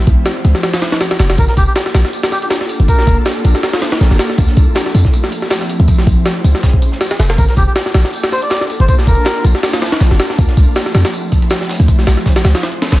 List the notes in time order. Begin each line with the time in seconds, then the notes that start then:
0.07 A#1, kick, closed hi-hat
0.26 snare, closed hi-hat
0.45 C#2, closed hi-hat
0.55 snare
0.63 snare, closed hi-hat
0.74 snare, closed hi-hat
0.82 snare, closed hi-hat
0.92 snare, closed hi-hat
1.01 snare, closed hi-hat
1.11 snare, closed hi-hat
1.19 F1, snare, closed hi-hat
1.30 snare, closed hi-hat
1.38 G1 A#4, kick, closed hi-hat, tambourine
1.48 A#4, snare, closed hi-hat
1.57 F1 G4, kick, closed hi-hat, tambourine
1.67 G4
1.75 snare, closed hi-hat, tambourine
1.86 snare
1.94 A#1, snare, closed hi-hat, tambourine
2.04 snare
2.13 closed hi-hat, tambourine
2.23 snare, closed hi-hat
2.32 G4, snare, tambourine
2.42 G4, closed hi-hat
2.50 snare, closed hi-hat, tambourine
2.61 snare
2.69 closed hi-hat, tambourine
2.80 G1, closed hi-hat
2.88 A#4, kick, closed hi-hat, tambourine
2.98 snare
3.07 F1, kick, closed hi-hat, tambourine
3.25 snare, closed hi-hat, tambourine
3.44 A#1, closed hi-hat, tambourine
3.55 snare
3.63 snare, closed hi-hat, tambourine
3.73 snare, closed hi-hat
3.82 snare, closed hi-hat, tambourine
3.92 snare, closed hi-hat
4.01 A#1, snare, closed hi-hat, tambourine
4.11 G1, snare
4.19 snare, closed hi-hat, tambourine
4.30 snare
4.38 D2, kick, closed hi-hat, tambourine
4.48 snare, closed hi-hat
4.56 C2, kick, closed hi-hat, tambourine
4.75 snare, closed hi-hat, tambourine
4.86 snare
4.94 F2, closed hi-hat, tambourine
5.05 kick, snare
5.13 closed hi-hat, tambourine
5.24 snare
5.32 closed hi-hat, tambourine
5.42 snare
5.50 snare, closed hi-hat, tambourine
5.61 snare
5.70 closed hi-hat, tambourine
5.80 D2, closed hi-hat
5.88 kick, closed hi-hat, tambourine
5.98 snare
6.07 A#1, kick, closed hi-hat, tambourine
6.25 snare, closed hi-hat, tambourine
6.44 C#2, closed hi-hat, tambourine
6.55 snare
6.63 kick, snare, closed hi-hat, tambourine
6.73 kick
6.82 closed hi-hat, tambourine
6.92 snare
7.01 snare, closed hi-hat, tambourine
7.11 snare, closed hi-hat
7.19 F1, snare, closed hi-hat, tambourine
7.29 snare, closed hi-hat
7.38 G1 A#4, kick, closed hi-hat, tambourine
7.49 A#4, snare, closed hi-hat
7.56 F1 G4, kick, closed hi-hat, tambourine
7.67 G4
7.76 snare, closed hi-hat, tambourine
7.86 snare
7.94 A#1, snare, closed hi-hat, tambourine
8.04 snare
8.13 closed hi-hat, tambourine
8.23 snare, closed hi-hat
8.32 C5, snare, tambourine
8.42 D5, closed hi-hat
8.50 snare, closed hi-hat, tambourine
8.61 snare
8.69 closed hi-hat, tambourine
8.80 G1 C5, closed hi-hat
8.88 C5, kick, closed hi-hat, tambourine
8.98 snare
9.07 F1 A#4, kick, closed hi-hat, tambourine
9.25 snare, closed hi-hat, tambourine
9.45 A#1, closed hi-hat, tambourine
9.55 snare
9.63 snare, closed hi-hat, tambourine
9.74 snare, closed hi-hat
9.82 snare, closed hi-hat, tambourine
9.92 snare, closed hi-hat
10.00 A#1, snare, closed hi-hat, tambourine
10.11 G1, snare
10.19 snare, closed hi-hat, tambourine
10.30 snare
10.38 D2, kick, closed hi-hat, tambourine
10.48 snare, closed hi-hat
10.57 C2, kick, closed hi-hat, tambourine
10.75 snare, closed hi-hat, tambourine
10.86 snare
10.94 F2, snare, closed hi-hat, tambourine
11.05 snare, closed hi-hat
11.13 closed hi-hat, tambourine
11.32 kick, closed hi-hat, tambourine
11.42 closed hi-hat
11.50 snare, closed hi-hat, tambourine
11.61 snare
11.69 snare, closed hi-hat, tambourine
11.80 D2, closed hi-hat
11.88 kick, closed hi-hat, tambourine
11.99 snare
12.07 A#1, snare, closed hi-hat, tambourine
12.17 snare
12.26 kick, snare, closed hi-hat, tambourine
12.36 snare, closed hi-hat
12.45 C#2, snare, closed hi-hat, tambourine
12.55 snare, closed hi-hat
12.63 snare, closed hi-hat, tambourine
12.82 snare, closed hi-hat, tambourine
12.92 A#1, snare, closed hi-hat